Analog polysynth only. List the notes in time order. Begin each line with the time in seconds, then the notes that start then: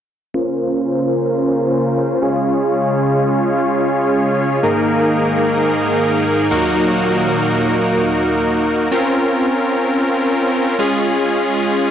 0.34 C#4 F4 A#4 C5
2.22 C#4 F4 G#4 C#5
4.63 A#3 D#4 G#4 A#4
6.50 A#3 D#4 F#4 A#4
8.91 C4 C#4 F4 A#4
10.79 G#3 C#4 F4 G#4